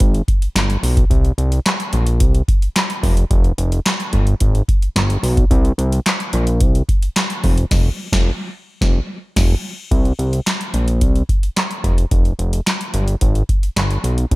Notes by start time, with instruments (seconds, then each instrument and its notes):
0.00 analog synth bass G#1, kick, closed hi-hat
0.14 closed hi-hat
0.28 kick, closed hi-hat
0.42 closed hi-hat
0.55 analog synth bass G1, snare, clap, closed hi-hat
0.70 closed hi-hat
0.83 analog synth bass B1, open hi-hat
0.97 kick, closed hi-hat
1.10 analog synth bass C2, kick, closed hi-hat
1.25 closed hi-hat
1.38 analog synth bass C2, closed hi-hat
1.52 closed hi-hat
1.66 snare, clap, closed hi-hat
1.80 closed hi-hat
1.93 analog synth bass A#1, closed hi-hat
2.07 closed hi-hat
2.20 analog synth bass C2, kick, closed hi-hat
2.35 closed hi-hat
2.48 kick, closed hi-hat
2.62 closed hi-hat
2.76 snare, clap, closed hi-hat
2.90 closed hi-hat
3.03 analog synth bass F1, kick, open hi-hat
3.17 closed hi-hat
3.31 analog synth bass F1, kick, closed hi-hat
3.44 closed hi-hat
3.58 analog synth bass F1, closed hi-hat
3.72 closed hi-hat
3.86 snare, clap, closed hi-hat
4.00 closed hi-hat
4.13 analog synth bass G1, kick, closed hi-hat
4.27 closed hi-hat
4.40 analog synth bass G#1, kick, closed hi-hat
4.55 closed hi-hat
4.68 kick, closed hi-hat
4.82 closed hi-hat
4.96 analog synth bass G1, snare, clap, closed hi-hat
5.10 closed hi-hat
5.23 analog synth bass B1, open hi-hat
5.37 kick, closed hi-hat
5.51 analog synth bass C2, kick, closed hi-hat
5.65 closed hi-hat
5.78 analog synth bass C2, closed hi-hat
5.92 closed hi-hat
6.06 snare, clap, closed hi-hat
6.20 closed hi-hat
6.33 analog synth bass A#1, closed hi-hat
6.47 closed hi-hat
6.61 analog synth bass C2, kick, closed hi-hat
6.75 closed hi-hat
6.89 kick, closed hi-hat
7.03 closed hi-hat
7.16 snare, clap, closed hi-hat
7.30 closed hi-hat
7.44 analog synth bass F1, kick, open hi-hat
7.58 closed hi-hat
7.71 analog synth bass F1, kick, snare, crash
8.12 analog synth bass F1, kick, snare
8.81 analog synth bass F1, kick, snare
9.36 analog synth bass F1, kick, snare, crash
9.91 analog synth bass C2, kick, closed hi-hat
10.05 closed hi-hat
10.19 analog synth bass C2, closed hi-hat
10.33 closed hi-hat
10.46 snare, clap, closed hi-hat
10.61 closed hi-hat
10.74 analog synth bass A#1, closed hi-hat
10.88 closed hi-hat
11.01 analog synth bass C2, kick, closed hi-hat
11.16 closed hi-hat
11.29 kick, closed hi-hat
11.43 closed hi-hat
11.57 snare, clap, closed hi-hat
11.71 closed hi-hat
11.84 analog synth bass F1, kick, closed hi-hat
11.98 closed hi-hat
12.11 analog synth bass F1, kick, closed hi-hat
12.25 closed hi-hat
12.39 analog synth bass F1, closed hi-hat
12.53 closed hi-hat
12.67 snare, clap, closed hi-hat
12.81 closed hi-hat
12.94 analog synth bass G1, closed hi-hat
13.08 closed hi-hat
13.21 analog synth bass G#1, kick, closed hi-hat
13.35 closed hi-hat
13.49 kick, closed hi-hat
13.63 closed hi-hat
13.76 analog synth bass G1, snare, clap, closed hi-hat
13.91 closed hi-hat
14.04 analog synth bass B1, closed hi-hat
14.18 closed hi-hat
14.31 analog synth bass C2, kick, closed hi-hat